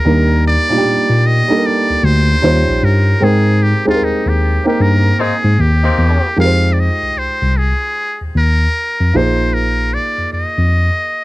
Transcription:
Already playing: muted trumpet A#4
0.05 tine electric piano D#2, upright piano G3 A#3 D4 D#4 A#4
0.48 muted trumpet D5
0.69 tine electric piano A#2, upright piano G3 A#3 D4 D#4 F4
0.78 upright piano G4
0.85 tine electric piano A#2
1.10 tine electric piano A#2
1.26 muted trumpet D#5
1.48 upright piano G3 A#3 D4 D#4 A4
1.57 upright piano A#4
1.66 muted trumpet D5
1.90 tine electric piano D2
2.04 tine electric piano D2, muted trumpet C5
2.42 tine electric piano D#2, upright piano G3 C#4 D#4 F4 C5
2.68 tine electric piano A#1
2.83 tine electric piano G2, muted trumpet A#4
3.20 tine electric piano G#2, upright piano G#3 C4 D#4 A#4 G5, muted trumpet G#4
3.63 muted trumpet G4
3.85 tine electric piano D#2, upright piano G#3 C4 D#4 G4 G#4, muted trumpet F4
3.94 upright piano A#4
4.01 tine electric piano D#2, muted trumpet D#4
4.26 tine electric piano D#2, muted trumpet G4
4.64 upright piano A#3 C4 D#4 A#4 G5, muted trumpet G4
4.80 tine electric piano G2, muted trumpet A#4
5.18 saxophone section A#3 C4 D#4, muted trumpet G#4
5.45 tine electric piano G#2
5.59 tine electric piano D#2, muted trumpet G4
5.82 saxophone section A#3 C4 D#4
5.98 tine electric piano E2
6.36 tine electric piano F2, upright piano G#3 D#4 F4 G4 A#4, muted trumpet F5
6.45 upright piano C5
6.73 muted trumpet D5
6.80 muted trumpet D#5
7.03 tine electric piano C2
7.17 tine electric piano C2, muted trumpet C5
7.42 tine electric piano C2
7.58 muted trumpet G#4
8.21 tine electric piano D#2
8.36 tine electric piano D#2, muted trumpet A#4
9.00 tine electric piano F2
9.13 tine electric piano A#1, upright piano A#3 D#4 F4 G#4 C5, muted trumpet C5
9.54 muted trumpet A#4
9.94 muted trumpet D5
10.19 tine electric piano F2
10.33 tine electric piano F2, muted trumpet D#5
10.58 tine electric piano F2

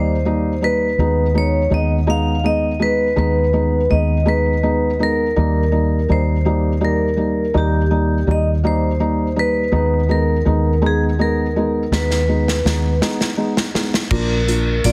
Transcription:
Already playing: fingered electric bass D#2, felt piano G3 A#3 D#4, vibraphone C5
0.25 felt piano G3 A#3 D#4
0.61 felt piano G3 A#3 D#4, vibraphone B4
0.98 fingered electric bass D#2, felt piano G#3 B3 D#4
1.34 felt piano G#3 B3 D#4, vibraphone C#5
1.70 fingered electric bass D#2, felt piano G#3 B3 D#4, vibraphone D#5
2.07 felt piano G#3 B3 D#4, vibraphone F5
2.44 felt piano G#3 B3 D#4, vibraphone D#5
2.79 felt piano G#3 B3 D#4, vibraphone B4
3.16 fingered electric bass D#2, felt piano G#3 B3 D#4, vibraphone B4
3.53 felt piano G#3 B3 D#4
3.90 fingered electric bass D#2, felt piano G#3 B3 D#4, vibraphone D#5
4.25 felt piano G#3 B3 D#4, vibraphone B4
4.63 felt piano G#3 B3 D#4
4.99 felt piano G#3 B3 D#4, vibraphone A#4
5.36 fingered electric bass D#2, felt piano G3 A#3 D#4
5.72 felt piano G3 A#3 D#4
6.08 fingered electric bass D#2, felt piano G3 A#3 D#4, vibraphone C5
6.45 felt piano G3 A#3 D#4
6.81 felt piano G3 A#3 D#4, vibraphone A#4
7.16 felt piano G3 A#3 D#4
7.54 fingered electric bass D#2, felt piano G3 A#3 D#4, vibraphone G4
7.91 felt piano G3 A#3 D#4
8.27 fingered electric bass D#2, felt piano G3 A#3 D#4
8.31 vibraphone D#5
8.63 felt piano G3 A#3 D#4, vibraphone C5
8.99 felt piano G3 A#3 D#4
9.36 felt piano G3 A#3 D#4, vibraphone B4
9.72 fingered electric bass D#2, felt piano G#3 B3 D#4
10.09 felt piano G#3 B3 D#4, vibraphone A#4
10.45 fingered electric bass D#2, felt piano G#3 B3 D#4
10.82 felt piano G#3 B3 D#4
10.86 vibraphone G#4
11.19 felt piano G#3 B3 D#4, vibraphone A#4
11.56 felt piano G#3 B3 D#4
11.92 fingered electric bass D#2, felt piano G#3 B3 D#4, vibraphone B4, snare
12.11 snare
12.28 felt piano G#3 B3 D#4
12.48 snare
12.65 fingered electric bass D#2, felt piano G#3 B3 D#4, snare
13.01 felt piano G#3 B3 D#4, snare
13.21 snare
13.37 felt piano G#3 B3 D#4
13.57 snare
13.74 felt piano G#3 B3 D#4, snare
13.94 snare
14.11 fingered electric bass A#1, felt piano A#3 D4 F4, vibraphone A#4, kick, crash
14.47 felt piano A#3 D4 F4, closed hi-hat
14.84 fingered electric bass A#1, felt piano A#3 D4 F4, vibraphone D5, closed hi-hat

